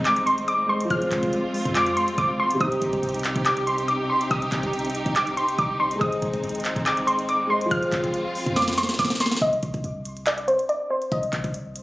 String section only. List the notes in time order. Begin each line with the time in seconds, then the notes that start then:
Already playing: G#3 C4 D#4
0.90 F4
2.60 C3 D#4 G4
6.01 G#3 C4
7.71 C4 F4